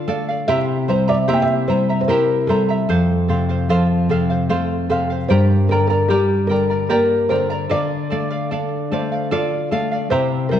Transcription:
0.00 0.44 D3 medium
0.08 0.47 A3 soft
0.08 0.28 A4 medium
0.08 0.28 D5 medium
0.08 0.27 F5 medium
0.28 0.48 D5 soft
0.28 0.48 F5 medium
0.48 2.85 C3 medium
0.48 0.88 E4 medium
0.48 0.88 G4 medium
0.48 0.87 C5 medium
0.48 0.57 E5 medium
0.48 0.88 E5 medium
0.48 0.88 A#5 medium
0.88 1.27 G3 soft
0.88 1.08 E4 medium
0.88 1.08 C5 soft
0.88 1.08 C5 medium
0.88 1.07 E5 medium
0.88 1.06 A#5 medium
1.08 1.27 E4 soft
1.08 1.14 D5 medium
1.08 1.28 E5 soft
1.08 1.27 A#5 medium
1.28 1.67 A#3 soft
1.28 1.68 E4 medium
1.28 1.68 G4 medium
1.28 1.67 C5 medium
1.28 1.35 E5 medium
1.28 1.69 E5 medium
1.28 1.69 A#5 medium
1.33 1.42 G5 medium
1.42 1.67 E5 medium
1.68 2.08 G3 soft
1.68 1.89 E4 soft
1.68 1.99 C5 medium
1.68 1.89 C5 soft
1.68 1.89 E5 medium
1.68 1.88 A#5 medium
1.89 2.08 E4 soft
1.89 2.09 E5 soft
1.89 2.09 A#5 soft
2.01 2.08 C5 medium
2.08 2.48 E4 soft
2.08 2.48 E4 medium
2.08 2.49 G4 medium
2.08 2.46 A#4 medium
2.08 2.48 C5 medium
2.08 2.49 E5 medium
2.08 2.49 A#5 medium
2.47 2.88 G3 medium
2.47 2.69 E4 medium
2.47 4.85 A4 medium
2.47 2.69 C5 medium
2.47 2.69 E5 medium
2.47 2.68 A#5 medium
2.69 2.88 E4 soft
2.69 2.90 E5 soft
2.69 2.89 A#5 soft
2.89 5.26 F2 medium
2.89 3.27 A4 medium
2.89 3.28 C5 medium
2.89 3.29 F5 medium
3.28 3.68 C3 soft
3.28 3.49 A4 soft
3.28 3.49 C5 medium
3.28 3.48 F5 medium
3.49 3.69 C5 soft
3.49 3.69 F5 medium
3.69 4.08 F3 soft
3.69 4.09 A4 medium
3.69 4.10 C5 medium
3.69 4.10 F5 medium
4.09 4.49 C3 soft
4.09 4.30 A4 medium
4.09 4.29 C5 medium
4.09 4.29 F5 medium
4.30 4.49 C5 soft
4.30 4.49 F5 soft
4.49 4.89 A3 medium
4.49 4.89 A4 medium
4.49 4.89 C5 medium
4.49 4.90 F5 medium
4.89 5.29 C3 soft
4.89 5.10 A4 medium
4.89 5.10 C5 medium
4.89 5.09 F5 medium
5.10 5.30 C5 soft
5.10 5.30 F5 soft
5.28 7.67 G2 medium
5.28 5.71 G4 medium
5.28 5.70 A#4 medium
5.28 5.67 C5 medium
5.28 5.71 D5 medium
5.28 5.70 G5 medium
5.28 5.71 A#5 medium
5.69 6.09 D3 soft
5.69 5.86 A#4 medium
5.69 5.90 A#4 medium
5.69 5.89 D5 medium
5.69 5.91 G5 medium
5.69 5.89 A#5 medium
5.87 6.08 A#4 medium
5.87 6.09 A#4 soft
5.87 6.09 D5 soft
5.87 6.10 A#5 medium
6.08 6.49 G3 soft
6.08 6.51 G4 medium
6.08 6.50 G4 medium
6.08 6.49 A#4 medium
6.08 6.49 D5 medium
6.08 6.48 G5 medium
6.08 6.50 A#5 medium
6.47 6.89 D3 soft
6.47 6.86 A#4 medium
6.47 6.70 A#4 soft
6.47 6.69 D5 soft
6.47 6.70 G5 soft
6.51 6.69 A#5 medium
6.70 6.89 A#4 soft
6.70 6.89 D5 soft
6.70 6.89 A#5 soft
6.89 7.30 A#3 soft
6.89 7.31 G4 medium
6.89 7.32 A#4 medium
6.89 7.29 A#4 medium
6.89 7.30 D5 medium
6.89 7.29 G5 medium
6.89 7.30 A#5 medium
7.29 7.70 D3 soft
7.29 7.50 A#4 medium
7.29 7.72 C5 medium
7.29 7.50 D5 medium
7.29 7.51 G5 medium
7.29 7.49 A#5 medium
7.50 7.69 A#4 soft
7.50 7.68 D5 soft
7.50 7.71 A#5 soft
7.69 10.08 D3 medium
7.69 8.09 A4 medium
7.69 8.10 D5 medium
7.69 9.68 D5 medium
7.69 8.11 F5 medium
8.10 8.51 A3 soft
8.10 8.31 A4 medium
8.10 8.31 D5 medium
8.10 8.29 F5 medium
8.30 8.50 D5 soft
8.30 8.51 F5 soft
8.51 8.91 D4 soft
8.51 8.90 A4 medium
8.51 8.91 D5 medium
8.51 8.92 F5 medium
8.91 9.31 A3 soft
8.91 9.12 A4 medium
8.91 9.29 C5 medium
8.91 9.12 D5 medium
8.91 9.11 F5 medium
9.12 9.30 D5 soft
9.12 9.31 F5 soft
9.31 9.71 F4 soft
9.31 9.70 A4 medium
9.31 9.71 D5 medium
9.31 9.69 D5 medium
9.31 9.71 F5 medium
9.71 10.11 A3 soft
9.71 9.92 A4 medium
9.71 9.92 D5 medium
9.71 10.09 F5 medium
9.71 9.90 F5 medium
9.91 10.11 D5 soft
9.91 10.11 F5 soft
10.10 10.60 C3 medium
10.10 10.51 E4 medium
10.10 10.52 G4 medium
10.10 10.53 C5 medium
10.10 10.50 C5 medium
10.10 10.51 E5 medium
10.10 10.52 A#5 medium
10.49 10.60 G3 soft
10.49 10.60 E4 soft
10.49 10.60 A#4 medium
10.49 10.60 C5 medium
10.49 10.60 E5 soft
10.49 10.60 A#5 medium

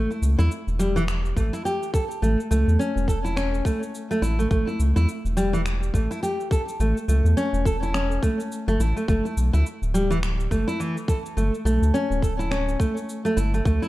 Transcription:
0.10 0.22 E4 medium
0.10 cabasa soft
0.22 0.36 C#2 medium
0.22 cabasa medium
0.39 0.49 E2 medium
0.39 0.50 E4 loud
0.39 cabasa soft
0.51 cabasa soft
0.67 1.34 E1 medium
0.67 cabasa soft
0.79 0.95 G3 medium
0.79 cabasa medium
0.96 1.03 E3 medium
0.96 cabasa soft
1.08 finger snap medium
1.08 cabasa soft
1.25 cabasa soft
1.37 1.51 A1 loud
1.37 1.52 A3 medium
1.37 kick medium
1.37 cabasa medium
1.53 1.65 E4 medium
1.53 cabasa soft
1.65 1.93 G4 medium
1.65 cabasa soft
1.83 cabasa soft
1.94 2.03 A4 medium
1.94 kick loud
1.94 cabasa medium
2.11 cabasa soft
2.22 2.36 A1 loud
2.22 2.38 A3 medium
2.22 cabasa soft
2.40 cabasa soft
2.51 2.65 C#2 medium
2.51 2.78 A3 medium
2.51 cabasa medium
2.67 2.78 E2 medium
2.67 cabasa soft
2.79 3.07 C#4 medium
2.79 cabasa soft
2.96 3.62 E1 medium
2.96 cabasa soft
3.08 3.18 A4 medium
3.08 kick medium
3.08 cabasa medium
3.24 3.35 E4 medium
3.24 cabasa soft
3.36 3.64 C#4 medium
3.36 finger snap medium
3.36 cabasa soft
3.54 cabasa soft
3.65 3.81 A3 medium
3.65 kick loud
3.65 cabasa medium
3.83 cabasa soft
3.95 cabasa soft
4.11 4.22 A3 medium
4.11 cabasa soft
4.22 4.47 A1 medium
4.22 4.37 E4 medium
4.22 cabasa medium
4.39 4.49 A3 medium
4.39 cabasa soft
4.51 4.65 A1 medium
4.51 4.67 A3 medium
4.51 kick loud
4.51 cabasa soft
4.67 4.79 E4 medium
4.67 cabasa soft
4.79 4.94 C#2 medium
4.79 cabasa medium
4.96 5.06 E2 medium
4.96 5.08 E4 loud
4.96 cabasa soft
5.09 cabasa soft
5.25 5.91 E1 medium
5.25 cabasa soft
5.37 5.53 G3 medium
5.37 cabasa medium
5.53 5.60 E3 medium
5.53 cabasa soft
5.66 finger snap medium
5.66 cabasa soft
5.83 cabasa soft
5.94 6.08 A1 loud
5.94 6.09 A3 medium
5.94 kick medium
5.94 cabasa medium
6.11 6.22 E4 medium
6.11 cabasa soft
6.23 6.50 G4 medium
6.23 cabasa soft
6.40 cabasa soft
6.51 6.61 A4 medium
6.51 kick loud
6.51 cabasa medium
6.69 cabasa soft
6.80 6.94 A1 loud
6.80 6.96 A3 medium
6.80 cabasa soft
6.97 cabasa soft
7.08 7.22 C#2 medium
7.08 7.36 A3 medium
7.08 cabasa medium
7.24 7.35 E2 medium
7.24 cabasa soft
7.37 7.64 C#4 loud
7.37 cabasa soft
7.53 8.19 E1 medium
7.53 cabasa soft
7.65 7.75 A4 medium
7.65 kick medium
7.65 cabasa medium
7.83 7.93 E4 medium
7.83 cabasa soft
7.94 8.22 C#4 medium
7.94 finger snap medium
7.94 cabasa soft
8.11 cabasa soft
8.23 8.39 A3 medium
8.23 kick medium
8.23 cabasa medium
8.40 cabasa soft
8.52 cabasa soft
8.68 8.78 G1 medium
8.68 8.79 A3 loud
8.68 cabasa soft
8.80 8.94 A1 loud
8.80 8.95 E4 medium
8.80 cabasa medium
8.96 9.07 A3 medium
8.96 cabasa soft
9.08 9.22 G1 loud
9.08 9.24 A3 medium
9.08 kick loud
9.08 cabasa soft
9.25 9.36 E4 medium
9.25 cabasa soft
9.37 9.51 B1 medium
9.37 cabasa medium
9.53 9.64 D2 medium
9.53 9.65 E4 loud
9.53 cabasa soft
9.66 cabasa soft
9.82 10.48 D1 medium
9.82 cabasa soft
9.94 10.10 G3 loud
9.94 cabasa medium
10.10 10.17 E3 medium
10.10 cabasa soft
10.23 finger snap medium
10.23 cabasa soft
10.40 cabasa soft
10.51 10.65 G1 loud
10.51 10.66 A3 medium
10.51 kick medium
10.51 cabasa medium
10.68 10.79 E4 medium
10.68 cabasa soft
10.80 10.96 E3 medium
10.80 cabasa soft
10.97 cabasa soft
11.08 11.18 A4 medium
11.08 kick loud
11.08 cabasa medium
11.26 cabasa soft
11.37 11.51 G1 medium
11.37 11.53 A3 medium
11.37 cabasa soft
11.54 cabasa soft
11.65 11.79 B1 medium
11.65 11.93 A3 medium
11.65 cabasa medium
11.82 11.92 D2 medium
11.82 cabasa soft
11.94 12.21 C#4 loud
11.94 cabasa soft
12.10 12.76 D1 medium
12.10 cabasa soft
12.22 12.32 A4 medium
12.22 kick medium
12.22 cabasa medium
12.39 12.50 E4 medium
12.39 cabasa soft
12.51 12.78 C#4 medium
12.51 finger snap medium
12.51 cabasa soft
12.69 cabasa soft
12.79 12.95 A3 medium
12.79 kick medium
12.79 cabasa medium
12.97 cabasa soft
13.09 cabasa soft
13.25 13.36 A3 medium
13.25 cabasa soft
13.37 13.62 G1 medium
13.37 13.52 E4 medium
13.37 cabasa medium
13.54 13.65 A3 medium
13.54 cabasa soft
13.65 13.79 D2 loud
13.65 13.82 A3 loud
13.65 kick loud
13.65 cabasa soft
13.82 13.88 E4 medium
13.82 cabasa soft

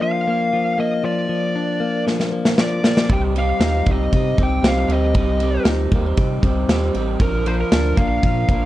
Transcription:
0.00 0.52 F3 medium
0.00 0.26 A#3 medium
0.00 1.54 D4 medium
0.00 0.79 F5 loud
0.27 0.77 A#3 medium
0.53 1.02 F3 medium
0.78 1.79 A#3 medium
0.78 1.03 D#5 medium
1.04 1.28 F3 medium
1.04 2.03 D5 medium
1.29 2.05 F3 medium
1.56 3.15 D4 medium
1.80 2.31 A#3 medium
2.06 2.57 F3 medium
2.06 snare medium
2.20 snare medium
2.32 2.82 A#3 medium
2.45 snare medium
2.58 3.09 F3 medium
2.58 3.13 D5 medium
2.58 snare loud
2.84 3.15 A#3 medium
2.84 snare medium
2.97 snare medium
3.09 3.53 C2 loud
3.09 3.35 C3 medium
3.09 3.34 G3 medium
3.09 3.35 G3 medium
3.09 3.36 C4 medium
3.09 3.36 D#4 medium
3.09 3.36 G4 loud
3.09 kick loud
3.09 ride medium
3.13 3.19 G5 loud
3.35 3.85 G3 medium
3.35 4.12 G3 medium
3.35 3.86 C4 medium
3.35 3.87 D#4 medium
3.35 3.88 G4 medium
3.35 3.90 F5 loud
3.35 ride medium
3.60 3.82 D#2 loud
3.60 5.67 D#4 medium
3.60 snare loud
3.60 ride medium
3.86 4.08 C2 medium
3.86 4.36 G3 medium
3.86 4.38 C4 medium
3.86 4.39 D#4 medium
3.86 4.40 G4 medium
3.86 kick medium
3.86 ride medium
3.92 4.42 D#5 medium
4.13 4.34 C3 loud
4.13 4.64 G3 medium
4.13 kick medium
4.13 ride medium
4.37 4.60 C2 loud
4.37 4.61 G3 medium
4.37 4.63 C4 medium
4.37 4.90 C4 medium
4.37 4.63 D#4 medium
4.37 4.65 G4 medium
4.37 kick medium
4.37 ride medium
4.43 4.67 G5 medium
4.62 4.85 C2 loud
4.62 4.87 G3 medium
4.62 5.16 G3 medium
4.62 4.88 C4 medium
4.62 4.89 D#4 medium
4.62 4.91 G4 medium
4.62 snare loud
4.62 ride medium
4.68 4.92 F5 loud
4.88 5.16 D2 loud
4.88 5.14 G3 medium
4.88 5.15 C4 medium
4.88 5.93 C4 medium
4.88 5.16 D#4 medium
4.88 5.16 G4 medium
4.88 ride medium
4.93 5.64 D#5 medium
5.14 5.59 C2 loud
5.14 5.41 C3 medium
5.14 5.38 G3 medium
5.14 5.41 G3 medium
5.14 5.40 C4 medium
5.14 5.40 D#4 loud
5.14 5.42 G4 medium
5.14 kick loud
5.14 ride medium
5.40 5.91 G3 medium
5.40 6.18 G3 medium
5.40 5.92 C4 medium
5.40 5.93 D#4 medium
5.40 5.93 G4 medium
5.40 ride medium
5.65 5.87 D2 medium
5.65 7.27 D#4 medium
5.65 snare loud
5.65 ride medium
5.92 6.14 D#2 medium
5.92 6.41 G3 medium
5.92 6.06 A#3 medium
5.92 6.43 C4 medium
5.92 6.43 D#4 medium
5.92 kick loud
5.92 ride medium
5.96 6.44 G4 medium
6.06 6.43 C4 medium
6.17 6.39 C3 loud
6.17 6.69 G3 medium
6.17 kick medium
6.17 ride medium
6.42 6.65 C2 loud
6.42 6.68 G3 medium
6.42 6.68 C4 medium
6.42 6.95 C4 medium
6.42 6.70 D#4 medium
6.42 6.70 G4 medium
6.42 kick medium
6.42 ride medium
6.68 6.91 D#2 loud
6.68 6.93 G3 medium
6.68 7.21 G3 medium
6.68 6.94 C4 medium
6.68 6.95 D#4 medium
6.68 snare loud
6.68 ride medium
6.72 6.95 G4 medium
6.94 7.17 A1 medium
6.94 7.20 G3 medium
6.94 7.20 C4 medium
6.94 7.27 C4 medium
6.94 7.21 D#4 medium
6.94 7.21 G4 medium
6.94 ride medium
7.19 7.64 A#1 loud
7.19 7.46 A#2 medium
7.19 7.46 D3 medium
7.19 7.43 F3 medium
7.19 7.45 F3 medium
7.19 7.44 A#3 medium
7.19 7.45 D4 medium
7.19 7.46 A#4 medium
7.19 7.47 A#4 loud
7.19 kick loud
7.19 ride medium
7.44 7.95 F3 medium
7.44 8.22 F3 medium
7.44 7.95 A#3 medium
7.44 7.97 D4 medium
7.44 7.98 A#4 medium
7.44 7.53 C5 loud
7.44 ride medium
7.60 8.00 A#4 medium
7.72 7.94 D2 loud
7.72 8.65 D4 medium
7.72 snare loud
7.72 ride medium
7.96 8.19 A#1 medium
7.96 8.47 F3 medium
7.96 8.48 A#3 medium
7.96 8.49 D4 medium
7.96 8.50 A#4 medium
7.96 8.65 F5 loud
7.96 kick medium
7.96 ride medium
8.23 8.45 A#2 medium
8.23 8.65 F3 medium
8.23 kick medium
8.23 ride medium
8.48 8.65 A#1 medium
8.48 8.65 F3 medium
8.48 8.65 A#3 medium
8.48 8.65 D4 medium
8.48 8.65 A#4 medium
8.48 kick medium
8.48 ride medium

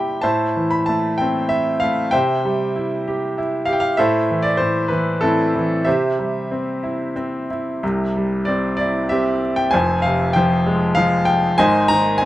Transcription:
0.00 0.20 C3 medium
0.00 0.25 G3 soft
0.00 0.26 E4 soft
0.00 0.25 G4 soft
0.00 0.23 C5 medium
0.00 0.23 E5 medium
0.00 0.25 G5 medium
0.00 0.25 B5 medium
0.21 2.09 A2 medium
0.21 1.16 C5 medium
0.21 1.16 E5 medium
0.21 0.68 A5 medium
0.56 1.79 E3 soft
0.71 0.88 B5 medium
0.86 1.82 A3 soft
0.86 1.20 A5 medium
1.18 2.10 C4 soft
1.18 1.51 G5 medium
1.49 1.79 E5 medium
1.80 2.12 A3 soft
1.80 2.09 F5 medium
2.11 3.95 C3 medium
2.11 3.63 C5 medium
2.11 3.63 E5 medium
2.11 3.63 G5 medium
2.45 3.65 G3 soft
2.76 3.36 E4 soft
3.08 3.67 G4 soft
3.38 3.97 E4 soft
3.65 3.98 G4 soft
3.65 3.73 F5 medium
3.73 3.80 G5 medium
3.80 3.99 F5 medium
3.97 4.60 A2 medium
3.97 4.87 A4 medium
3.97 4.56 C5 medium
3.97 4.45 E5 medium
4.31 4.91 E3 soft
4.43 4.59 D5 medium
4.57 4.87 C5 medium
4.61 5.22 A2 soft
4.88 5.54 E3 soft
4.88 5.22 B4 medium
5.21 5.85 A2 soft
5.21 5.82 C4 medium
5.21 5.82 E4 medium
5.21 5.81 A4 medium
5.55 5.86 E3 soft
5.85 7.79 C3 medium
5.85 7.12 G4 soft
5.85 7.12 C5 soft
5.85 7.11 E5 medium
6.19 7.46 G3 soft
6.51 7.15 C4 soft
6.83 7.49 E4 soft
7.16 7.80 C4 soft
7.51 7.82 E4 soft
7.83 9.71 C2 soft
7.83 9.71 C3 medium
8.16 9.40 G3 soft
8.45 9.11 C4 soft
8.45 8.75 D5 medium
8.77 9.08 D5 medium
8.81 9.72 E4 medium
9.09 9.72 C4 soft
9.09 9.70 G4 medium
9.09 9.54 E5 medium
9.56 9.72 G5 medium
9.71 11.54 F1 medium
9.71 11.54 F2 medium
9.71 10.34 C5 medium
9.71 10.01 G#5 medium
10.02 11.24 C3 medium
10.02 10.35 F5 medium
10.33 10.96 F3 soft
10.33 11.23 C5 medium
10.33 10.97 G5 medium
10.66 11.56 G#3 medium
10.95 11.57 F3 medium
10.95 11.24 F5 medium
11.25 11.58 G5 medium
11.58 12.25 G#1 medium
11.58 12.25 G#2 medium
11.58 12.25 C5 medium
11.58 12.25 D#5 medium
11.58 11.90 G#5 loud
11.88 12.25 D#3 medium
11.88 12.21 A#5 loud
12.18 12.25 C4 medium
12.18 12.25 G#5 medium

